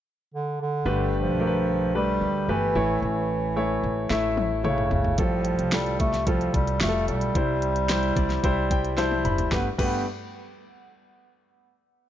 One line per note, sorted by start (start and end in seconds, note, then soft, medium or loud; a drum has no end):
0.34 0.58 D3 medium
0.61 1.10 D3 medium
0.85 1.23 G1 medium
0.85 1.63 G2 medium
0.85 1.63 D3 medium
0.85 1.34 A3 medium
0.85 1.34 G4 medium
0.85 1.34 B4 medium
1.15 1.91 F3 medium
1.26 2.17 B1 medium
1.40 1.88 A3 medium
1.40 1.88 G4 medium
1.40 1.47 A#4 medium
1.47 1.91 B4 medium
1.95 2.51 G3 medium
1.95 2.42 A3 medium
1.95 2.42 G4 medium
1.95 2.43 B4 medium
2.21 2.46 D2 medium
2.48 2.73 G1 medium
2.48 3.02 E3 medium
2.48 2.74 A3 medium
2.48 2.76 G4 medium
2.48 2.76 B4 medium
2.75 3.00 A1 medium
2.75 3.53 A2 medium
2.75 3.53 E3 medium
2.75 3.47 A3 medium
2.75 3.47 E4 medium
2.75 3.47 C#5 medium
3.02 3.79 A1 medium
3.02 4.34 E3 medium
3.56 4.04 A3 medium
3.56 4.04 E4 medium
3.56 4.04 C#5 medium
3.83 4.09 A1 medium
4.10 4.88 A1 medium
4.10 4.58 A3 medium
4.10 4.58 E4 medium
4.10 4.58 E5 medium
4.10 snare soft
4.37 high tom medium
4.64 4.90 C#3 medium
4.64 5.12 A3 medium
4.64 5.12 E4 medium
4.64 5.12 C#5 medium
4.64 mid tom medium
4.78 mid tom medium
4.91 5.17 G1 medium
4.91 5.20 C#3 medium
4.91 floor tom medium
5.05 floor tom medium
5.18 5.56 A1 medium
5.18 5.96 A2 soft
5.18 5.75 F3 medium
5.18 5.67 G3 medium
5.18 5.67 F4 medium
5.18 5.67 A4 medium
5.18 kick loud
5.18 closed hi-hat medium
5.45 closed hi-hat medium
5.59 6.50 C2 medium
5.59 closed hi-hat soft
5.72 6.21 G3 medium
5.72 5.99 G3 medium
5.72 6.21 F4 medium
5.72 6.21 A4 medium
5.72 snare medium
5.72 closed hi-hat medium
5.86 closed hi-hat soft
6.00 6.29 A3 medium
6.00 kick medium
6.00 closed hi-hat medium
6.14 snare soft
6.14 closed hi-hat soft
6.27 6.53 F3 medium
6.27 6.75 G3 medium
6.27 6.75 F4 medium
6.27 6.75 A4 medium
6.27 kick medium
6.27 closed hi-hat medium
6.41 closed hi-hat soft
6.54 6.83 C2 medium
6.54 6.79 G3 medium
6.54 kick medium
6.54 closed hi-hat medium
6.67 closed hi-hat soft
6.81 7.06 F1 medium
6.81 7.29 G3 medium
6.81 7.06 A3 medium
6.81 7.29 F4 medium
6.81 6.88 G4 medium
6.81 snare medium
6.81 closed hi-hat medium
6.89 7.33 A4 medium
7.08 7.33 B1 medium
7.08 8.93 G3 medium
7.08 closed hi-hat medium
7.21 closed hi-hat soft
7.35 8.12 C2 medium
7.35 8.13 C3 soft
7.35 7.84 G3 medium
7.35 7.84 E4 medium
7.35 7.84 C5 medium
7.35 kick medium
7.35 closed hi-hat medium
7.62 closed hi-hat medium
7.76 closed hi-hat soft
7.89 8.37 G3 medium
7.89 8.38 E4 medium
7.89 8.38 C5 medium
7.89 snare medium
7.89 closed hi-hat medium
8.03 closed hi-hat soft
8.16 8.42 C2 medium
8.16 8.42 D5 medium
8.16 kick medium
8.16 closed hi-hat medium
8.30 snare soft
8.30 closed hi-hat soft
8.44 9.26 C2 medium
8.44 8.92 G3 medium
8.44 8.92 E4 medium
8.44 8.92 C5 medium
8.44 8.69 E5 medium
8.44 kick medium
8.44 closed hi-hat medium
8.71 8.96 G5 medium
8.71 kick medium
8.71 closed hi-hat medium
8.85 closed hi-hat soft
8.98 9.46 G3 medium
8.98 9.46 E4 medium
8.98 9.46 C5 medium
8.98 9.23 A5 medium
8.98 snare soft
8.98 closed hi-hat medium
9.11 high tom soft
9.24 9.50 F1 medium
9.24 9.50 B5 medium
9.24 closed hi-hat medium
9.24 mid tom medium
9.38 closed hi-hat soft
9.38 floor tom medium
9.52 9.67 G1 medium
9.52 9.67 G2 medium
9.52 9.67 A3 medium
9.52 9.68 B3 medium
9.52 9.67 G4 medium
9.52 9.67 B4 medium
9.52 kick medium
9.52 snare medium
9.78 10.04 G1 medium
9.78 10.04 G2 medium
9.78 10.04 A3 medium
9.78 10.05 B3 medium
9.78 10.04 G4 medium
9.78 10.04 B4 medium
9.78 kick medium
9.78 crash medium